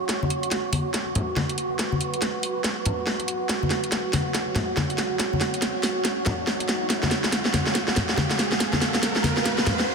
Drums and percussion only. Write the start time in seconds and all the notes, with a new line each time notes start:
0.09 kick, snare, closed hi-hat
0.23 high conga
0.30 closed hi-hat
0.43 closed hi-hat
0.51 kick, snare, closed hi-hat
0.73 open hi-hat, high conga
0.94 kick, snare, closed hi-hat
1.15 closed hi-hat, low conga
1.36 kick, snare, high conga
1.49 closed hi-hat
1.58 closed hi-hat
1.79 kick, snare, closed hi-hat
1.92 high conga
2.01 closed hi-hat
2.14 closed hi-hat
2.22 kick, snare, closed hi-hat
2.43 open hi-hat
2.64 kick, snare, closed hi-hat
2.85 closed hi-hat, low conga
3.07 kick, snare
3.20 closed hi-hat
3.28 closed hi-hat
3.49 kick, snare, closed hi-hat
3.63 high conga
3.71 snare, closed hi-hat
3.84 closed hi-hat
3.92 kick, snare, closed hi-hat
4.13 snare, open hi-hat, high conga
4.35 kick, snare, closed hi-hat
4.55 snare, closed hi-hat, low conga
4.77 kick, snare, high conga
4.90 closed hi-hat
4.98 snare, closed hi-hat
5.20 kick, snare, closed hi-hat
5.33 high conga
5.41 snare, closed hi-hat
5.54 closed hi-hat
5.62 kick, snare, closed hi-hat
5.83 snare, open hi-hat
6.05 kick, snare, closed hi-hat
6.26 snare, closed hi-hat, low conga
6.47 kick, snare
6.60 closed hi-hat
6.69 snare, closed hi-hat
6.90 kick, snare, closed hi-hat
7.03 snare, high conga
7.11 snare, closed hi-hat
7.24 snare, closed hi-hat
7.32 kick, snare, closed hi-hat
7.45 snare
7.54 snare, open hi-hat, high conga
7.67 snare
7.75 kick, snare, closed hi-hat
7.88 snare
7.96 snare, closed hi-hat, low conga
8.09 snare
8.18 kick, snare, high conga
8.31 snare, closed hi-hat
8.39 snare, closed hi-hat
8.52 snare
8.60 kick, snare, closed hi-hat
8.73 snare, high conga
8.82 snare, closed hi-hat
8.95 snare, closed hi-hat
9.03 kick, snare, closed hi-hat
9.16 snare
9.24 snare, open hi-hat, high conga
9.37 snare
9.45 kick, snare, closed hi-hat
9.58 snare
9.67 snare, closed hi-hat, low conga
9.80 snare